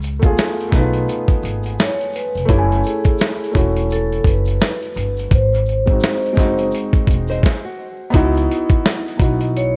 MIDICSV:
0, 0, Header, 1, 6, 480
1, 0, Start_track
1, 0, Key_signature, 4, "minor"
1, 0, Tempo, 705882
1, 1690, Time_signature, 4, 2, 24, 8
1, 6638, End_track
2, 0, Start_track
2, 0, Title_t, "Vibraphone"
2, 0, Program_c, 0, 11
2, 1225, Note_on_c, 0, 73, 104
2, 1465, Note_off_c, 0, 73, 0
2, 1466, Note_on_c, 0, 71, 106
2, 1704, Note_on_c, 0, 69, 86
2, 1705, Note_off_c, 0, 71, 0
2, 1944, Note_off_c, 0, 69, 0
2, 1949, Note_on_c, 0, 68, 85
2, 2393, Note_off_c, 0, 68, 0
2, 2671, Note_on_c, 0, 69, 95
2, 2907, Note_off_c, 0, 69, 0
2, 2912, Note_on_c, 0, 71, 93
2, 3628, Note_on_c, 0, 72, 89
2, 3643, Note_off_c, 0, 71, 0
2, 4552, Note_off_c, 0, 72, 0
2, 6269, Note_on_c, 0, 75, 89
2, 6372, Note_off_c, 0, 75, 0
2, 6510, Note_on_c, 0, 73, 113
2, 6613, Note_off_c, 0, 73, 0
2, 6638, End_track
3, 0, Start_track
3, 0, Title_t, "Nylon-string guitar"
3, 0, Program_c, 1, 24
3, 4960, Note_on_c, 1, 72, 83
3, 4964, Note_on_c, 1, 63, 70
3, 5048, Note_off_c, 1, 72, 0
3, 5050, Note_off_c, 1, 63, 0
3, 5060, Note_on_c, 1, 68, 78
3, 5064, Note_on_c, 1, 60, 72
3, 5194, Note_off_c, 1, 68, 0
3, 5196, Note_off_c, 1, 60, 0
3, 5198, Note_on_c, 1, 66, 66
3, 5515, Note_off_c, 1, 66, 0
3, 6638, End_track
4, 0, Start_track
4, 0, Title_t, "Felt piano"
4, 0, Program_c, 2, 0
4, 0, Control_c, 2, 64, 127
4, 132, Note_on_c, 2, 57, 72
4, 147, Note_on_c, 2, 59, 68
4, 163, Note_on_c, 2, 65, 72
4, 177, Note_on_c, 2, 68, 91
4, 409, Note_off_c, 2, 57, 0
4, 417, Note_off_c, 2, 59, 0
4, 425, Note_off_c, 2, 65, 0
4, 432, Note_off_c, 2, 68, 0
4, 467, Note_on_c, 2, 57, 78
4, 483, Note_on_c, 2, 59, 79
4, 498, Note_on_c, 2, 63, 59
4, 514, Note_on_c, 2, 71, 78
4, 542, Note_on_c, 2, 65, 73
4, 548, Note_off_c, 2, 63, 0
4, 1206, Note_off_c, 2, 57, 0
4, 1214, Note_off_c, 2, 59, 0
4, 1229, Note_off_c, 2, 71, 0
4, 1243, Note_off_c, 2, 65, 0
4, 1669, Note_on_c, 2, 57, 91
4, 1683, Note_on_c, 2, 61, 78
4, 1697, Note_on_c, 2, 64, 93
4, 1698, Control_c, 2, 64, 0
4, 1714, Note_on_c, 2, 67, 67
4, 1756, Note_off_c, 2, 67, 0
4, 1757, Note_on_c, 2, 80, 93
4, 1827, Control_c, 2, 64, 127
4, 2238, Note_off_c, 2, 57, 0
4, 2245, Note_off_c, 2, 61, 0
4, 2252, Note_off_c, 2, 64, 0
4, 2282, Note_off_c, 2, 80, 0
4, 2389, Note_on_c, 2, 57, 67
4, 2402, Note_on_c, 2, 61, 59
4, 2417, Note_on_c, 2, 64, 64
4, 2432, Note_on_c, 2, 66, 78
4, 3126, Note_off_c, 2, 57, 0
4, 3133, Note_off_c, 2, 61, 0
4, 3140, Note_off_c, 2, 64, 0
4, 3148, Note_off_c, 2, 66, 0
4, 3618, Control_c, 2, 64, 0
4, 3744, Control_c, 2, 64, 127
4, 3984, Note_on_c, 2, 56, 62
4, 3996, Note_on_c, 2, 60, 55
4, 4013, Note_on_c, 2, 63, 56
4, 4027, Note_on_c, 2, 66, 69
4, 4255, Note_off_c, 2, 56, 0
4, 4261, Note_off_c, 2, 60, 0
4, 4270, Note_off_c, 2, 63, 0
4, 4277, Note_off_c, 2, 66, 0
4, 4305, Note_on_c, 2, 56, 87
4, 4319, Note_on_c, 2, 60, 80
4, 4334, Note_on_c, 2, 63, 81
4, 4347, Note_on_c, 2, 66, 93
4, 5044, Note_off_c, 2, 56, 0
4, 5051, Note_off_c, 2, 60, 0
4, 5058, Control_c, 2, 64, 0
4, 5059, Note_off_c, 2, 63, 0
4, 5066, Note_off_c, 2, 66, 0
4, 5508, Note_on_c, 2, 59, 108
4, 5524, Note_on_c, 2, 63, 97
4, 5539, Note_on_c, 2, 64, 94
4, 5552, Note_on_c, 2, 66, 114
4, 5643, Control_c, 2, 64, 127
4, 6077, Note_off_c, 2, 59, 0
4, 6085, Note_off_c, 2, 63, 0
4, 6093, Note_off_c, 2, 64, 0
4, 6099, Note_off_c, 2, 66, 0
4, 6239, Note_on_c, 2, 59, 60
4, 6251, Note_on_c, 2, 63, 65
4, 6268, Note_on_c, 2, 64, 63
4, 6282, Note_on_c, 2, 66, 74
4, 6638, Note_off_c, 2, 59, 0
4, 6638, Note_off_c, 2, 63, 0
4, 6638, Note_off_c, 2, 64, 0
4, 6638, Note_off_c, 2, 66, 0
4, 6638, End_track
5, 0, Start_track
5, 0, Title_t, "Upright bass"
5, 0, Program_c, 3, 32
5, 0, Note_on_c, 3, 37, 96
5, 225, Note_off_c, 3, 37, 0
5, 493, Note_on_c, 3, 35, 99
5, 710, Note_off_c, 3, 35, 0
5, 972, Note_on_c, 3, 32, 86
5, 1190, Note_off_c, 3, 32, 0
5, 1600, Note_on_c, 3, 29, 78
5, 1684, Note_off_c, 3, 29, 0
5, 1694, Note_on_c, 3, 30, 104
5, 1911, Note_off_c, 3, 30, 0
5, 2416, Note_on_c, 3, 28, 90
5, 2866, Note_off_c, 3, 28, 0
5, 2889, Note_on_c, 3, 30, 86
5, 3108, Note_off_c, 3, 30, 0
5, 3373, Note_on_c, 3, 31, 86
5, 3590, Note_off_c, 3, 31, 0
5, 3611, Note_on_c, 3, 32, 103
5, 4064, Note_off_c, 3, 32, 0
5, 4335, Note_on_c, 3, 30, 88
5, 4551, Note_off_c, 3, 30, 0
5, 4812, Note_on_c, 3, 28, 83
5, 5029, Note_off_c, 3, 28, 0
5, 5535, Note_on_c, 3, 37, 106
5, 5751, Note_off_c, 3, 37, 0
5, 6255, Note_on_c, 3, 35, 93
5, 6638, Note_off_c, 3, 35, 0
5, 6638, End_track
6, 0, Start_track
6, 0, Title_t, "Drums"
6, 12, Note_on_c, 9, 82, 54
6, 26, Note_on_c, 9, 42, 64
6, 80, Note_off_c, 9, 82, 0
6, 94, Note_off_c, 9, 42, 0
6, 150, Note_on_c, 9, 42, 40
6, 154, Note_on_c, 9, 36, 93
6, 159, Note_on_c, 9, 82, 50
6, 218, Note_off_c, 9, 42, 0
6, 222, Note_off_c, 9, 36, 0
6, 227, Note_off_c, 9, 82, 0
6, 252, Note_on_c, 9, 82, 77
6, 263, Note_on_c, 9, 38, 110
6, 266, Note_on_c, 9, 42, 81
6, 320, Note_off_c, 9, 82, 0
6, 331, Note_off_c, 9, 38, 0
6, 334, Note_off_c, 9, 42, 0
6, 412, Note_on_c, 9, 42, 35
6, 480, Note_off_c, 9, 42, 0
6, 491, Note_on_c, 9, 82, 49
6, 492, Note_on_c, 9, 36, 80
6, 499, Note_on_c, 9, 38, 32
6, 500, Note_on_c, 9, 42, 65
6, 559, Note_off_c, 9, 82, 0
6, 560, Note_off_c, 9, 36, 0
6, 567, Note_off_c, 9, 38, 0
6, 568, Note_off_c, 9, 42, 0
6, 636, Note_on_c, 9, 42, 49
6, 704, Note_off_c, 9, 42, 0
6, 739, Note_on_c, 9, 82, 62
6, 743, Note_on_c, 9, 42, 74
6, 807, Note_off_c, 9, 82, 0
6, 811, Note_off_c, 9, 42, 0
6, 872, Note_on_c, 9, 36, 84
6, 883, Note_on_c, 9, 42, 37
6, 940, Note_off_c, 9, 36, 0
6, 951, Note_off_c, 9, 42, 0
6, 970, Note_on_c, 9, 82, 53
6, 986, Note_on_c, 9, 42, 66
6, 1038, Note_off_c, 9, 82, 0
6, 1054, Note_off_c, 9, 42, 0
6, 1108, Note_on_c, 9, 82, 50
6, 1128, Note_on_c, 9, 42, 47
6, 1176, Note_off_c, 9, 82, 0
6, 1196, Note_off_c, 9, 42, 0
6, 1217, Note_on_c, 9, 82, 59
6, 1222, Note_on_c, 9, 42, 81
6, 1223, Note_on_c, 9, 38, 122
6, 1285, Note_off_c, 9, 82, 0
6, 1290, Note_off_c, 9, 42, 0
6, 1291, Note_off_c, 9, 38, 0
6, 1366, Note_on_c, 9, 42, 30
6, 1434, Note_off_c, 9, 42, 0
6, 1444, Note_on_c, 9, 82, 44
6, 1468, Note_on_c, 9, 42, 81
6, 1512, Note_off_c, 9, 82, 0
6, 1536, Note_off_c, 9, 42, 0
6, 1594, Note_on_c, 9, 82, 44
6, 1614, Note_on_c, 9, 42, 40
6, 1662, Note_off_c, 9, 82, 0
6, 1682, Note_off_c, 9, 42, 0
6, 1692, Note_on_c, 9, 36, 94
6, 1697, Note_on_c, 9, 42, 72
6, 1699, Note_on_c, 9, 82, 63
6, 1760, Note_off_c, 9, 36, 0
6, 1765, Note_off_c, 9, 42, 0
6, 1767, Note_off_c, 9, 82, 0
6, 1851, Note_on_c, 9, 42, 36
6, 1919, Note_off_c, 9, 42, 0
6, 1928, Note_on_c, 9, 82, 46
6, 1950, Note_on_c, 9, 42, 67
6, 1996, Note_off_c, 9, 82, 0
6, 2018, Note_off_c, 9, 42, 0
6, 2070, Note_on_c, 9, 82, 50
6, 2071, Note_on_c, 9, 42, 47
6, 2075, Note_on_c, 9, 36, 89
6, 2138, Note_off_c, 9, 82, 0
6, 2139, Note_off_c, 9, 42, 0
6, 2143, Note_off_c, 9, 36, 0
6, 2165, Note_on_c, 9, 82, 77
6, 2185, Note_on_c, 9, 38, 124
6, 2188, Note_on_c, 9, 42, 71
6, 2233, Note_off_c, 9, 82, 0
6, 2253, Note_off_c, 9, 38, 0
6, 2256, Note_off_c, 9, 42, 0
6, 2339, Note_on_c, 9, 42, 33
6, 2403, Note_on_c, 9, 82, 48
6, 2407, Note_off_c, 9, 42, 0
6, 2414, Note_on_c, 9, 36, 78
6, 2427, Note_on_c, 9, 42, 66
6, 2471, Note_off_c, 9, 82, 0
6, 2482, Note_off_c, 9, 36, 0
6, 2495, Note_off_c, 9, 42, 0
6, 2560, Note_on_c, 9, 42, 51
6, 2628, Note_off_c, 9, 42, 0
6, 2653, Note_on_c, 9, 82, 55
6, 2667, Note_on_c, 9, 42, 77
6, 2721, Note_off_c, 9, 82, 0
6, 2735, Note_off_c, 9, 42, 0
6, 2805, Note_on_c, 9, 42, 34
6, 2873, Note_off_c, 9, 42, 0
6, 2886, Note_on_c, 9, 36, 85
6, 2888, Note_on_c, 9, 82, 58
6, 2904, Note_on_c, 9, 42, 68
6, 2954, Note_off_c, 9, 36, 0
6, 2956, Note_off_c, 9, 82, 0
6, 2972, Note_off_c, 9, 42, 0
6, 3027, Note_on_c, 9, 82, 53
6, 3044, Note_on_c, 9, 42, 49
6, 3095, Note_off_c, 9, 82, 0
6, 3112, Note_off_c, 9, 42, 0
6, 3132, Note_on_c, 9, 82, 66
6, 3138, Note_on_c, 9, 38, 107
6, 3138, Note_on_c, 9, 42, 80
6, 3200, Note_off_c, 9, 82, 0
6, 3206, Note_off_c, 9, 38, 0
6, 3206, Note_off_c, 9, 42, 0
6, 3280, Note_on_c, 9, 42, 34
6, 3348, Note_off_c, 9, 42, 0
6, 3360, Note_on_c, 9, 82, 46
6, 3380, Note_on_c, 9, 42, 69
6, 3428, Note_off_c, 9, 82, 0
6, 3448, Note_off_c, 9, 42, 0
6, 3511, Note_on_c, 9, 82, 43
6, 3529, Note_on_c, 9, 42, 36
6, 3579, Note_off_c, 9, 82, 0
6, 3597, Note_off_c, 9, 42, 0
6, 3610, Note_on_c, 9, 36, 100
6, 3611, Note_on_c, 9, 42, 75
6, 3614, Note_on_c, 9, 82, 57
6, 3678, Note_off_c, 9, 36, 0
6, 3679, Note_off_c, 9, 42, 0
6, 3682, Note_off_c, 9, 82, 0
6, 3771, Note_on_c, 9, 42, 34
6, 3839, Note_off_c, 9, 42, 0
6, 3845, Note_on_c, 9, 82, 53
6, 3867, Note_on_c, 9, 42, 56
6, 3913, Note_off_c, 9, 82, 0
6, 3935, Note_off_c, 9, 42, 0
6, 3987, Note_on_c, 9, 82, 51
6, 3992, Note_on_c, 9, 42, 43
6, 3994, Note_on_c, 9, 36, 82
6, 4055, Note_off_c, 9, 82, 0
6, 4060, Note_off_c, 9, 42, 0
6, 4062, Note_off_c, 9, 36, 0
6, 4082, Note_on_c, 9, 82, 75
6, 4105, Note_on_c, 9, 38, 121
6, 4108, Note_on_c, 9, 42, 68
6, 4150, Note_off_c, 9, 82, 0
6, 4173, Note_off_c, 9, 38, 0
6, 4176, Note_off_c, 9, 42, 0
6, 4258, Note_on_c, 9, 42, 36
6, 4316, Note_on_c, 9, 82, 55
6, 4326, Note_off_c, 9, 42, 0
6, 4334, Note_on_c, 9, 36, 82
6, 4344, Note_on_c, 9, 38, 34
6, 4346, Note_on_c, 9, 42, 67
6, 4384, Note_off_c, 9, 82, 0
6, 4402, Note_off_c, 9, 36, 0
6, 4412, Note_off_c, 9, 38, 0
6, 4414, Note_off_c, 9, 42, 0
6, 4471, Note_on_c, 9, 82, 54
6, 4480, Note_on_c, 9, 42, 52
6, 4539, Note_off_c, 9, 82, 0
6, 4548, Note_off_c, 9, 42, 0
6, 4566, Note_on_c, 9, 82, 58
6, 4588, Note_on_c, 9, 42, 76
6, 4634, Note_off_c, 9, 82, 0
6, 4656, Note_off_c, 9, 42, 0
6, 4713, Note_on_c, 9, 36, 92
6, 4728, Note_on_c, 9, 42, 33
6, 4781, Note_off_c, 9, 36, 0
6, 4796, Note_off_c, 9, 42, 0
6, 4807, Note_on_c, 9, 82, 53
6, 4810, Note_on_c, 9, 36, 90
6, 4832, Note_on_c, 9, 42, 73
6, 4875, Note_off_c, 9, 82, 0
6, 4878, Note_off_c, 9, 36, 0
6, 4900, Note_off_c, 9, 42, 0
6, 4947, Note_on_c, 9, 82, 55
6, 4972, Note_on_c, 9, 42, 46
6, 5015, Note_off_c, 9, 82, 0
6, 5040, Note_off_c, 9, 42, 0
6, 5052, Note_on_c, 9, 36, 99
6, 5070, Note_on_c, 9, 38, 94
6, 5120, Note_off_c, 9, 36, 0
6, 5138, Note_off_c, 9, 38, 0
6, 5534, Note_on_c, 9, 36, 94
6, 5539, Note_on_c, 9, 42, 71
6, 5602, Note_off_c, 9, 36, 0
6, 5607, Note_off_c, 9, 42, 0
6, 5694, Note_on_c, 9, 42, 37
6, 5762, Note_off_c, 9, 42, 0
6, 5791, Note_on_c, 9, 42, 68
6, 5859, Note_off_c, 9, 42, 0
6, 5913, Note_on_c, 9, 42, 47
6, 5916, Note_on_c, 9, 36, 96
6, 5981, Note_off_c, 9, 42, 0
6, 5984, Note_off_c, 9, 36, 0
6, 6025, Note_on_c, 9, 38, 121
6, 6028, Note_on_c, 9, 42, 74
6, 6093, Note_off_c, 9, 38, 0
6, 6096, Note_off_c, 9, 42, 0
6, 6178, Note_on_c, 9, 42, 37
6, 6246, Note_off_c, 9, 42, 0
6, 6255, Note_on_c, 9, 36, 91
6, 6267, Note_on_c, 9, 42, 73
6, 6323, Note_off_c, 9, 36, 0
6, 6335, Note_off_c, 9, 42, 0
6, 6398, Note_on_c, 9, 42, 51
6, 6466, Note_off_c, 9, 42, 0
6, 6506, Note_on_c, 9, 42, 72
6, 6574, Note_off_c, 9, 42, 0
6, 6638, End_track
0, 0, End_of_file